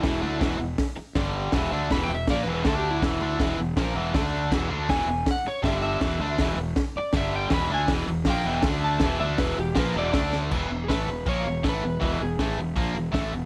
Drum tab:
CC |--------|--------|--------|x-------|
HH |o-o-o-o-|o-o-o-o-|o-o-o-o-|--o-o-o-|
SD |o-o-o-o-|o-o-o-o-|o-o-o-o-|o-o-o-o-|
BD |o-o-o-o-|o-o-o-o-|o-o-o-o-|o-o-o-o-|

CC |--------|--------|--------|x-------|
HH |o-o-o-o-|o-o-o-o-|o-o-o-o-|--o-o-o-|
SD |o-o-o-o-|o-o-o-o-|o-o-o-oo|--o---o-|
BD |o-o-o-o-|o-o-o-o-|o-o-o-o-|o-o-o-o-|

CC |--------|
HH |o-o-o-o-|
SD |--o---o-|
BD |o-o-o-o-|